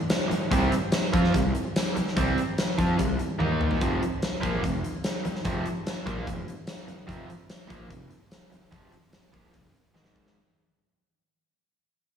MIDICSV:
0, 0, Header, 1, 6, 480
1, 0, Start_track
1, 0, Tempo, 410116
1, 604, Time_signature, 4, 2, 24, 8
1, 14238, End_track
2, 0, Start_track
2, 0, Title_t, "Overdriven electric guitar"
2, 0, Program_c, 0, 29
2, 595, Note_on_c, 0, 48, 92
2, 609, Note_on_c, 0, 55, 111
2, 610, Note_on_c, 0, 60, 109
2, 833, Note_off_c, 0, 48, 0
2, 840, Note_off_c, 0, 55, 0
2, 841, Note_off_c, 0, 60, 0
2, 1328, Note_on_c, 0, 53, 81
2, 1332, Note_on_c, 0, 60, 75
2, 1337, Note_on_c, 0, 65, 90
2, 1561, Note_off_c, 0, 53, 0
2, 1563, Note_off_c, 0, 60, 0
2, 1566, Note_off_c, 0, 65, 0
2, 1577, Note_on_c, 0, 48, 58
2, 1577, Note_on_c, 0, 55, 61
2, 1765, Note_off_c, 0, 48, 0
2, 1765, Note_off_c, 0, 55, 0
2, 2537, Note_on_c, 0, 48, 91
2, 2541, Note_on_c, 0, 55, 95
2, 2550, Note_on_c, 0, 60, 106
2, 2768, Note_off_c, 0, 48, 0
2, 2770, Note_off_c, 0, 55, 0
2, 2775, Note_off_c, 0, 60, 0
2, 3252, Note_on_c, 0, 53, 78
2, 3262, Note_on_c, 0, 60, 79
2, 3263, Note_on_c, 0, 65, 74
2, 3486, Note_off_c, 0, 53, 0
2, 3490, Note_on_c, 0, 48, 64
2, 3492, Note_off_c, 0, 60, 0
2, 3492, Note_off_c, 0, 65, 0
2, 3498, Note_on_c, 0, 55, 67
2, 3685, Note_off_c, 0, 48, 0
2, 3689, Note_off_c, 0, 55, 0
2, 3964, Note_on_c, 0, 51, 89
2, 3970, Note_on_c, 0, 58, 84
2, 3977, Note_on_c, 0, 63, 96
2, 4444, Note_off_c, 0, 51, 0
2, 4447, Note_off_c, 0, 58, 0
2, 4451, Note_off_c, 0, 63, 0
2, 4460, Note_on_c, 0, 41, 92
2, 4464, Note_on_c, 0, 48, 106
2, 4470, Note_on_c, 0, 53, 108
2, 4688, Note_off_c, 0, 41, 0
2, 4694, Note_off_c, 0, 48, 0
2, 4697, Note_off_c, 0, 53, 0
2, 5160, Note_on_c, 0, 46, 80
2, 5168, Note_on_c, 0, 53, 77
2, 5174, Note_on_c, 0, 58, 91
2, 5402, Note_off_c, 0, 46, 0
2, 5406, Note_off_c, 0, 53, 0
2, 5409, Note_off_c, 0, 58, 0
2, 5417, Note_on_c, 0, 41, 68
2, 5425, Note_on_c, 0, 48, 72
2, 5610, Note_off_c, 0, 41, 0
2, 5614, Note_off_c, 0, 48, 0
2, 6385, Note_on_c, 0, 41, 97
2, 6389, Note_on_c, 0, 48, 105
2, 6394, Note_on_c, 0, 53, 111
2, 6601, Note_off_c, 0, 41, 0
2, 6617, Note_off_c, 0, 48, 0
2, 6620, Note_off_c, 0, 53, 0
2, 7093, Note_on_c, 0, 53, 87
2, 7095, Note_on_c, 0, 46, 71
2, 7097, Note_on_c, 0, 58, 91
2, 7329, Note_off_c, 0, 46, 0
2, 7329, Note_off_c, 0, 53, 0
2, 7330, Note_off_c, 0, 58, 0
2, 7333, Note_on_c, 0, 41, 67
2, 7339, Note_on_c, 0, 48, 62
2, 7528, Note_off_c, 0, 41, 0
2, 7531, Note_off_c, 0, 48, 0
2, 8272, Note_on_c, 0, 41, 91
2, 8280, Note_on_c, 0, 48, 97
2, 8285, Note_on_c, 0, 53, 101
2, 8505, Note_off_c, 0, 41, 0
2, 8521, Note_off_c, 0, 48, 0
2, 8524, Note_off_c, 0, 53, 0
2, 8991, Note_on_c, 0, 46, 92
2, 9001, Note_on_c, 0, 53, 82
2, 9007, Note_on_c, 0, 58, 85
2, 9226, Note_off_c, 0, 46, 0
2, 9227, Note_on_c, 0, 41, 65
2, 9231, Note_on_c, 0, 48, 64
2, 9241, Note_off_c, 0, 53, 0
2, 9244, Note_off_c, 0, 58, 0
2, 9433, Note_off_c, 0, 41, 0
2, 9435, Note_off_c, 0, 48, 0
2, 10202, Note_on_c, 0, 41, 100
2, 10208, Note_on_c, 0, 48, 104
2, 10210, Note_on_c, 0, 53, 115
2, 10430, Note_off_c, 0, 41, 0
2, 10443, Note_off_c, 0, 48, 0
2, 10444, Note_off_c, 0, 53, 0
2, 10919, Note_on_c, 0, 46, 75
2, 10928, Note_on_c, 0, 53, 79
2, 10942, Note_on_c, 0, 58, 76
2, 11157, Note_off_c, 0, 46, 0
2, 11159, Note_on_c, 0, 41, 62
2, 11162, Note_off_c, 0, 53, 0
2, 11164, Note_on_c, 0, 48, 68
2, 11169, Note_off_c, 0, 58, 0
2, 11356, Note_off_c, 0, 41, 0
2, 11359, Note_off_c, 0, 48, 0
2, 11638, Note_on_c, 0, 44, 88
2, 11638, Note_on_c, 0, 51, 91
2, 11643, Note_on_c, 0, 56, 97
2, 12114, Note_off_c, 0, 51, 0
2, 12115, Note_off_c, 0, 44, 0
2, 12117, Note_off_c, 0, 56, 0
2, 14238, End_track
3, 0, Start_track
3, 0, Title_t, "Picked electric bass"
3, 0, Program_c, 1, 34
3, 604, Note_on_c, 1, 36, 94
3, 828, Note_off_c, 1, 36, 0
3, 1331, Note_on_c, 1, 41, 95
3, 1553, Note_off_c, 1, 41, 0
3, 1575, Note_on_c, 1, 36, 78
3, 1796, Note_off_c, 1, 36, 0
3, 2541, Note_on_c, 1, 36, 91
3, 2761, Note_off_c, 1, 36, 0
3, 3261, Note_on_c, 1, 41, 83
3, 3482, Note_off_c, 1, 41, 0
3, 3507, Note_on_c, 1, 36, 73
3, 3725, Note_off_c, 1, 36, 0
3, 3978, Note_on_c, 1, 39, 85
3, 4425, Note_off_c, 1, 39, 0
3, 4469, Note_on_c, 1, 29, 89
3, 4687, Note_off_c, 1, 29, 0
3, 5196, Note_on_c, 1, 34, 86
3, 5411, Note_off_c, 1, 34, 0
3, 5427, Note_on_c, 1, 29, 82
3, 5647, Note_off_c, 1, 29, 0
3, 6390, Note_on_c, 1, 29, 91
3, 6608, Note_off_c, 1, 29, 0
3, 7105, Note_on_c, 1, 34, 90
3, 7325, Note_off_c, 1, 34, 0
3, 7343, Note_on_c, 1, 29, 79
3, 7564, Note_off_c, 1, 29, 0
3, 8292, Note_on_c, 1, 29, 92
3, 8517, Note_off_c, 1, 29, 0
3, 9021, Note_on_c, 1, 34, 89
3, 9242, Note_off_c, 1, 34, 0
3, 9250, Note_on_c, 1, 29, 80
3, 9475, Note_off_c, 1, 29, 0
3, 10208, Note_on_c, 1, 29, 92
3, 10433, Note_off_c, 1, 29, 0
3, 10929, Note_on_c, 1, 34, 88
3, 11153, Note_off_c, 1, 34, 0
3, 11169, Note_on_c, 1, 29, 79
3, 11392, Note_off_c, 1, 29, 0
3, 11646, Note_on_c, 1, 32, 88
3, 12092, Note_off_c, 1, 32, 0
3, 14238, End_track
4, 0, Start_track
4, 0, Title_t, "Muted overdriven electric guitar strokes"
4, 345, Note_on_c, 9, 29, 52
4, 462, Note_off_c, 9, 29, 0
4, 850, Note_on_c, 9, 29, 59
4, 967, Note_off_c, 9, 29, 0
4, 2297, Note_on_c, 9, 29, 53
4, 2414, Note_off_c, 9, 29, 0
4, 2783, Note_on_c, 9, 29, 53
4, 2900, Note_off_c, 9, 29, 0
4, 4702, Note_on_c, 9, 29, 59
4, 4819, Note_off_c, 9, 29, 0
4, 6152, Note_on_c, 9, 29, 51
4, 6269, Note_off_c, 9, 29, 0
4, 6615, Note_on_c, 9, 29, 53
4, 6732, Note_off_c, 9, 29, 0
4, 8042, Note_on_c, 9, 29, 51
4, 8159, Note_off_c, 9, 29, 0
4, 8519, Note_on_c, 9, 29, 57
4, 8636, Note_off_c, 9, 29, 0
4, 9967, Note_on_c, 9, 29, 55
4, 10084, Note_off_c, 9, 29, 0
4, 10444, Note_on_c, 9, 29, 58
4, 10561, Note_off_c, 9, 29, 0
4, 14238, End_track
5, 0, Start_track
5, 0, Title_t, "Muted picked electric bass strokes"
5, 365, Note_on_c, 9, 29, 39
5, 482, Note_off_c, 9, 29, 0
5, 849, Note_on_c, 9, 29, 39
5, 966, Note_off_c, 9, 29, 0
5, 2301, Note_on_c, 9, 29, 40
5, 2418, Note_off_c, 9, 29, 0
5, 2773, Note_on_c, 9, 29, 35
5, 2890, Note_off_c, 9, 29, 0
5, 4711, Note_on_c, 9, 29, 39
5, 4828, Note_off_c, 9, 29, 0
5, 6173, Note_on_c, 9, 29, 40
5, 6290, Note_off_c, 9, 29, 0
5, 6631, Note_on_c, 9, 29, 38
5, 6748, Note_off_c, 9, 29, 0
5, 8062, Note_on_c, 9, 29, 38
5, 8179, Note_off_c, 9, 29, 0
5, 8546, Note_on_c, 9, 29, 41
5, 8663, Note_off_c, 9, 29, 0
5, 9990, Note_on_c, 9, 29, 41
5, 10107, Note_off_c, 9, 29, 0
5, 10458, Note_on_c, 9, 29, 40
5, 10575, Note_off_c, 9, 29, 0
5, 14238, End_track
6, 0, Start_track
6, 0, Title_t, "Drums"
6, 114, Note_on_c, 9, 42, 83
6, 114, Note_on_c, 9, 54, 112
6, 119, Note_on_c, 9, 38, 111
6, 231, Note_off_c, 9, 42, 0
6, 231, Note_off_c, 9, 54, 0
6, 236, Note_off_c, 9, 38, 0
6, 364, Note_on_c, 9, 42, 56
6, 482, Note_off_c, 9, 42, 0
6, 603, Note_on_c, 9, 36, 94
6, 604, Note_on_c, 9, 42, 79
6, 720, Note_off_c, 9, 36, 0
6, 721, Note_off_c, 9, 42, 0
6, 843, Note_on_c, 9, 42, 56
6, 960, Note_off_c, 9, 42, 0
6, 1076, Note_on_c, 9, 42, 81
6, 1076, Note_on_c, 9, 54, 108
6, 1081, Note_on_c, 9, 38, 110
6, 1193, Note_off_c, 9, 42, 0
6, 1193, Note_off_c, 9, 54, 0
6, 1198, Note_off_c, 9, 38, 0
6, 1328, Note_on_c, 9, 36, 105
6, 1333, Note_on_c, 9, 42, 63
6, 1445, Note_off_c, 9, 36, 0
6, 1450, Note_off_c, 9, 42, 0
6, 1452, Note_on_c, 9, 38, 31
6, 1569, Note_off_c, 9, 38, 0
6, 1572, Note_on_c, 9, 36, 94
6, 1575, Note_on_c, 9, 42, 87
6, 1689, Note_off_c, 9, 36, 0
6, 1692, Note_off_c, 9, 42, 0
6, 1812, Note_on_c, 9, 42, 64
6, 1929, Note_off_c, 9, 42, 0
6, 2060, Note_on_c, 9, 42, 91
6, 2060, Note_on_c, 9, 54, 113
6, 2065, Note_on_c, 9, 38, 115
6, 2177, Note_off_c, 9, 42, 0
6, 2177, Note_off_c, 9, 54, 0
6, 2182, Note_off_c, 9, 38, 0
6, 2301, Note_on_c, 9, 42, 64
6, 2418, Note_off_c, 9, 42, 0
6, 2428, Note_on_c, 9, 38, 29
6, 2536, Note_on_c, 9, 36, 93
6, 2536, Note_on_c, 9, 42, 81
6, 2545, Note_off_c, 9, 38, 0
6, 2653, Note_off_c, 9, 36, 0
6, 2653, Note_off_c, 9, 42, 0
6, 2783, Note_on_c, 9, 42, 59
6, 2900, Note_off_c, 9, 42, 0
6, 3022, Note_on_c, 9, 42, 80
6, 3022, Note_on_c, 9, 54, 111
6, 3026, Note_on_c, 9, 38, 101
6, 3139, Note_off_c, 9, 42, 0
6, 3139, Note_off_c, 9, 54, 0
6, 3143, Note_off_c, 9, 38, 0
6, 3260, Note_on_c, 9, 36, 98
6, 3263, Note_on_c, 9, 42, 60
6, 3377, Note_off_c, 9, 36, 0
6, 3380, Note_off_c, 9, 42, 0
6, 3500, Note_on_c, 9, 42, 82
6, 3504, Note_on_c, 9, 36, 90
6, 3617, Note_off_c, 9, 42, 0
6, 3621, Note_off_c, 9, 36, 0
6, 3737, Note_on_c, 9, 42, 56
6, 3854, Note_off_c, 9, 42, 0
6, 3983, Note_on_c, 9, 48, 59
6, 4100, Note_off_c, 9, 48, 0
6, 4223, Note_on_c, 9, 45, 81
6, 4340, Note_off_c, 9, 45, 0
6, 4340, Note_on_c, 9, 43, 79
6, 4457, Note_off_c, 9, 43, 0
6, 4461, Note_on_c, 9, 42, 74
6, 4465, Note_on_c, 9, 36, 92
6, 4578, Note_off_c, 9, 42, 0
6, 4582, Note_off_c, 9, 36, 0
6, 4712, Note_on_c, 9, 42, 60
6, 4829, Note_off_c, 9, 42, 0
6, 4944, Note_on_c, 9, 42, 82
6, 4944, Note_on_c, 9, 54, 106
6, 4949, Note_on_c, 9, 38, 109
6, 5061, Note_off_c, 9, 42, 0
6, 5061, Note_off_c, 9, 54, 0
6, 5066, Note_off_c, 9, 38, 0
6, 5189, Note_on_c, 9, 36, 97
6, 5189, Note_on_c, 9, 42, 57
6, 5306, Note_off_c, 9, 36, 0
6, 5306, Note_off_c, 9, 42, 0
6, 5429, Note_on_c, 9, 36, 90
6, 5432, Note_on_c, 9, 42, 83
6, 5546, Note_off_c, 9, 36, 0
6, 5549, Note_off_c, 9, 42, 0
6, 5669, Note_on_c, 9, 42, 61
6, 5786, Note_off_c, 9, 42, 0
6, 5900, Note_on_c, 9, 42, 91
6, 5900, Note_on_c, 9, 54, 120
6, 5905, Note_on_c, 9, 38, 120
6, 6017, Note_off_c, 9, 42, 0
6, 6017, Note_off_c, 9, 54, 0
6, 6022, Note_off_c, 9, 38, 0
6, 6145, Note_on_c, 9, 42, 64
6, 6262, Note_off_c, 9, 42, 0
6, 6268, Note_on_c, 9, 38, 31
6, 6376, Note_on_c, 9, 42, 77
6, 6382, Note_on_c, 9, 36, 107
6, 6385, Note_off_c, 9, 38, 0
6, 6493, Note_off_c, 9, 42, 0
6, 6499, Note_off_c, 9, 36, 0
6, 6619, Note_on_c, 9, 42, 57
6, 6736, Note_off_c, 9, 42, 0
6, 6865, Note_on_c, 9, 42, 80
6, 6865, Note_on_c, 9, 54, 105
6, 6870, Note_on_c, 9, 38, 111
6, 6982, Note_off_c, 9, 42, 0
6, 6982, Note_off_c, 9, 54, 0
6, 6987, Note_off_c, 9, 38, 0
6, 7101, Note_on_c, 9, 36, 100
6, 7103, Note_on_c, 9, 42, 56
6, 7218, Note_off_c, 9, 36, 0
6, 7220, Note_off_c, 9, 42, 0
6, 7342, Note_on_c, 9, 36, 91
6, 7345, Note_on_c, 9, 42, 86
6, 7459, Note_off_c, 9, 36, 0
6, 7462, Note_off_c, 9, 42, 0
6, 7585, Note_on_c, 9, 42, 57
6, 7702, Note_off_c, 9, 42, 0
6, 7808, Note_on_c, 9, 42, 88
6, 7808, Note_on_c, 9, 54, 116
6, 7813, Note_on_c, 9, 38, 116
6, 7925, Note_off_c, 9, 42, 0
6, 7925, Note_off_c, 9, 54, 0
6, 7930, Note_off_c, 9, 38, 0
6, 8055, Note_on_c, 9, 42, 53
6, 8172, Note_off_c, 9, 42, 0
6, 8296, Note_on_c, 9, 36, 100
6, 8299, Note_on_c, 9, 42, 73
6, 8413, Note_off_c, 9, 36, 0
6, 8416, Note_off_c, 9, 42, 0
6, 8541, Note_on_c, 9, 42, 57
6, 8658, Note_off_c, 9, 42, 0
6, 8773, Note_on_c, 9, 42, 83
6, 8773, Note_on_c, 9, 54, 100
6, 8778, Note_on_c, 9, 38, 112
6, 8890, Note_off_c, 9, 42, 0
6, 8890, Note_off_c, 9, 54, 0
6, 8895, Note_off_c, 9, 38, 0
6, 9016, Note_on_c, 9, 36, 106
6, 9017, Note_on_c, 9, 42, 62
6, 9133, Note_off_c, 9, 36, 0
6, 9134, Note_off_c, 9, 42, 0
6, 9252, Note_on_c, 9, 36, 94
6, 9253, Note_on_c, 9, 42, 86
6, 9369, Note_off_c, 9, 36, 0
6, 9370, Note_off_c, 9, 42, 0
6, 9487, Note_on_c, 9, 42, 55
6, 9604, Note_off_c, 9, 42, 0
6, 9731, Note_on_c, 9, 42, 89
6, 9731, Note_on_c, 9, 54, 117
6, 9735, Note_on_c, 9, 38, 109
6, 9848, Note_off_c, 9, 42, 0
6, 9848, Note_off_c, 9, 54, 0
6, 9852, Note_off_c, 9, 38, 0
6, 9976, Note_on_c, 9, 42, 65
6, 10093, Note_off_c, 9, 42, 0
6, 10208, Note_on_c, 9, 42, 81
6, 10211, Note_on_c, 9, 36, 92
6, 10325, Note_off_c, 9, 42, 0
6, 10328, Note_off_c, 9, 36, 0
6, 10442, Note_on_c, 9, 42, 62
6, 10559, Note_off_c, 9, 42, 0
6, 10683, Note_on_c, 9, 42, 85
6, 10683, Note_on_c, 9, 54, 111
6, 10688, Note_on_c, 9, 38, 104
6, 10800, Note_off_c, 9, 42, 0
6, 10800, Note_off_c, 9, 54, 0
6, 10805, Note_off_c, 9, 38, 0
6, 10930, Note_on_c, 9, 36, 101
6, 10930, Note_on_c, 9, 42, 61
6, 11047, Note_off_c, 9, 36, 0
6, 11047, Note_off_c, 9, 42, 0
6, 11160, Note_on_c, 9, 42, 87
6, 11167, Note_on_c, 9, 36, 93
6, 11277, Note_off_c, 9, 42, 0
6, 11284, Note_off_c, 9, 36, 0
6, 11406, Note_on_c, 9, 42, 54
6, 11524, Note_off_c, 9, 42, 0
6, 11651, Note_on_c, 9, 38, 58
6, 11761, Note_off_c, 9, 38, 0
6, 11761, Note_on_c, 9, 38, 61
6, 11878, Note_off_c, 9, 38, 0
6, 11889, Note_on_c, 9, 36, 74
6, 12006, Note_off_c, 9, 36, 0
6, 12016, Note_on_c, 9, 38, 70
6, 12133, Note_off_c, 9, 38, 0
6, 14238, End_track
0, 0, End_of_file